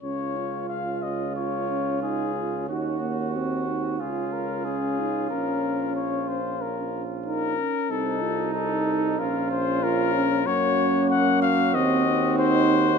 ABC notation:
X:1
M:4/4
L:1/8
Q:1/4=92
K:Db
V:1 name="Trumpet"
d2 f e d2 A2 | G2 G2 A B A2 | B2 d c B z B2 | =A2 A2 B c B2 |
[K:Gblyd] d2 g f e2 c2 |]
V:2 name="Trumpet"
F8 | G4 F4- | F6- F z | E4 F4 |
[K:Gblyd] G8 |]
V:3 name="Euphonium"
D F3 F D E F | E B, C E F2 D E | D4- D z E D | C F E2 D2 F D |
[K:Gblyd] D4 C E3 |]
V:4 name="French horn"
D8- | D2 C2 D4- | D6- D z | E4 D4 |
[K:Gblyd] B,4 C4 |]
V:5 name="Tuba" clef=bass
D,,8 | E,,4 D,,4 | B,,,6- B,,, z | C,,4 B,,,4 |
[K:Gblyd] G,,4 E,,4 |]